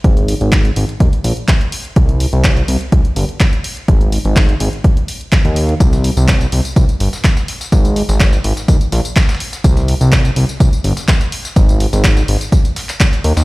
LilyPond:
<<
  \new Staff \with { instrumentName = "Analog synth bass" } { \clef bass \time 4/4 \key c \minor \tempo 4 = 125 aes,,8 r16 aes,,8 r16 aes,,16 r16 ees,16 r16 bes,,16 r4 r16 | c,8 r16 c,8 r16 c,16 r16 c,16 r16 g,,16 r4 r16 | aes,,8 r16 aes,,8 r16 aes,,16 r4. ees,8 r16 | c,8 r16 c,8 r16 c,16 r16 c,16 r16 g,,16 r4 r16 |
aes,,8 r16 aes,,8 r16 aes,,16 r16 ees,16 r16 bes,,16 r4 r16 | c,8 r16 c,8 r16 c,16 r16 c,16 r16 g,,16 r4 r16 | aes,,8 r16 aes,,8 r16 aes,,16 r4. r16 ees,16 ees,16 | }
  \new DrumStaff \with { instrumentName = "Drums" } \drummode { \time 4/4 <hh bd>16 hh16 hho16 hh16 <hc hh bd>16 hh16 hho16 hh16 <hh bd>16 hh16 hho16 hh16 <hc hh bd>16 hh16 hho16 hh16 | <hh bd>16 hh16 hho16 hh16 <hc hh bd>16 hh16 hho16 hh16 <hh bd>16 hh16 hho16 hh16 <hc hh bd>16 hh16 hho16 hh16 | <hh bd>16 hh16 hho16 hh16 <hc hh bd>16 hh16 hho16 hh16 <hh bd>16 hh16 hho16 hh16 <hc hh bd>16 hh16 hho16 hh16 | <hh bd tamb>16 <hh sn tamb>16 <hh hho>16 <hh tamb>16 <hc hh bd sn tamb>16 <hh tamb>16 <hh hho>16 <hh tamb>16 <hh bd tamb>16 <hh tamb>16 <hh hho>16 <hh sn tamb>16 <hc hh bd sn tamb>16 <hh sn tamb>16 <hh hho sn>16 <hh sn tamb>16 |
<hh bd tamb>16 <hh tamb>16 <hh hho>16 <hh sn tamb>16 <hc hh bd sn tamb>16 <hh sn tamb>16 <hh hho>16 <sn tamb>16 <hh bd tamb>16 <hh tamb>16 <hh hho sn>16 <hh tamb>16 <hc hh bd sn tamb>32 <hh sn>32 <hh sn tamb>32 <hh sn>32 <hh hho>16 <hh sn tamb>16 | <hh bd tamb>16 <hh sn tamb>16 <hh hho>16 <hh tamb>16 <hc hh bd sn tamb>16 <hh tamb>16 <hh hho>16 <hh tamb>16 <hh bd tamb>16 <hh tamb>16 <hh hho>16 <hh sn tamb>16 <hc hh bd sn tamb>16 <hh sn tamb>16 <hh hho>16 <hh sn tamb>16 | <hh bd tamb>16 <hh tamb>16 <hh hho>16 <hh sn tamb>16 <hc hh bd sn tamb>16 <hh sn tamb>16 <hh hho>16 <hh tamb>16 <hh bd tamb>16 <hh tamb>16 <hh hho sn>16 <hc tamb>16 <hc hh bd sn tamb>16 <hh sn tamb>16 <hh hho sn>16 <hh sn tamb>16 | }
>>